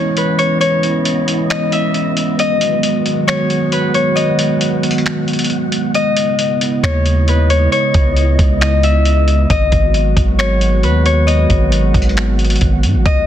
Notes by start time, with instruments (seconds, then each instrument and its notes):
Already playing: analog synth pad E3 G#3 B3 C#4 E4, synth texture B3 E4 D#5, harp C#5 D#5
0.17 harp B4, closed hi-hat
0.39 harp C#5, closed hi-hat
0.61 harp C#5, closed hi-hat
0.83 closed hi-hat
1.05 closed hi-hat
1.28 closed hi-hat
1.50 harp D#5, finger snap, closed hi-hat
1.72 harp E5, closed hi-hat
1.94 closed hi-hat
2.17 closed hi-hat
2.39 analog synth pad D#3 F#3 F#4, synth texture G#4 F#5, harp D#5, closed hi-hat
2.61 closed hi-hat
2.83 closed hi-hat
3.06 closed hi-hat
3.28 harp C#5, finger snap, closed hi-hat
3.50 closed hi-hat
3.72 harp B4, closed hi-hat
3.94 harp C#5, closed hi-hat
4.16 synth texture F#4, harp D#5, closed hi-hat
4.39 closed hi-hat
4.61 closed hi-hat
4.83 closed hi-hat
4.91 closed hi-hat
4.98 closed hi-hat
5.06 finger snap, closed hi-hat
5.28 closed hi-hat
5.33 closed hi-hat
5.39 closed hi-hat
5.44 closed hi-hat
5.50 closed hi-hat
5.72 closed hi-hat
5.94 analog synth pad C#3 E4 D#5, synth texture B3 E4 D#5, harp D#5, closed hi-hat
6.17 closed hi-hat
6.39 closed hi-hat
6.61 closed hi-hat
6.83 808-style bass D#2, harp C#5, finger snap, closed hi-hat
7.06 closed hi-hat
7.28 harp B4, closed hi-hat
7.50 harp C#5, closed hi-hat
7.72 harp C#5, closed hi-hat
7.94 808-style bass C#2, kick, closed hi-hat
8.17 closed hi-hat
8.39 808-style bass C#2, kick, closed hi-hat
8.61 harp D#5, finger snap, closed hi-hat
8.83 harp E5, closed hi-hat
9.05 closed hi-hat
9.28 closed hi-hat
9.50 808-style bass G#1, analog synth pad D#3 F#3 G#3 B3 F#4, synth texture B3 G#4 F#5, harp D#5, kick, closed hi-hat
9.72 808-style bass G#1, kick, closed hi-hat
9.94 closed hi-hat
10.17 808-style bass G#1, kick, closed hi-hat
10.39 harp C#5, finger snap, closed hi-hat
10.61 closed hi-hat
10.83 808-style bass D#2, harp B4, closed hi-hat
11.06 harp C#5, closed hi-hat
11.27 synth texture F#4, harp D#5, closed hi-hat
11.50 808-style bass G#1, kick, closed hi-hat
11.72 closed hi-hat
11.94 808-style bass G#1, kick, closed hi-hat
12.02 closed hi-hat
12.09 closed hi-hat
12.17 finger snap, closed hi-hat
12.39 closed hi-hat
12.44 closed hi-hat
12.50 closed hi-hat
12.56 closed hi-hat
12.61 808-style bass G#1, kick, closed hi-hat
12.83 808-style bass G#2, closed hi-hat
12.95 808-style bass G#1
13.06 808-style bass C#2, analog synth pad C#3 E3 G#3 B3, synth texture B3 E4, harp D#5, kick, closed hi-hat